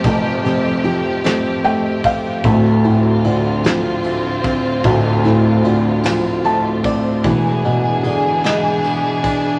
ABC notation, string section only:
X:1
M:6/8
L:1/8
Q:3/8=50
K:Dm
V:1 name="String section"
[F,A,G]6 | [D,CF]6- | [D,CF]6 | [E,D^G]6 |]